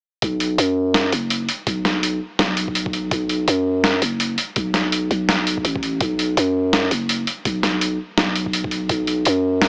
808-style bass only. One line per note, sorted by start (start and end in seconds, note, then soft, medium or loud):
0.22 0.57 B1 medium
0.58 1.12 F#2 medium
1.13 1.48 F#1 medium
1.67 2.20 B1 loud
2.39 3.10 B1 medium
3.11 3.47 B1 medium
3.48 4.01 F#2 medium
4.02 4.37 F#1 medium
4.57 5.09 B1 loud
5.11 5.64 B1 medium
5.65 6.00 A1 medium
6.01 6.36 B1 loud
6.37 6.90 F#2 medium
6.91 7.26 F#1 medium
7.45 7.99 B1 medium
8.18 8.89 B1 medium
8.90 9.25 B1 loud
9.26 9.68 F#2 loud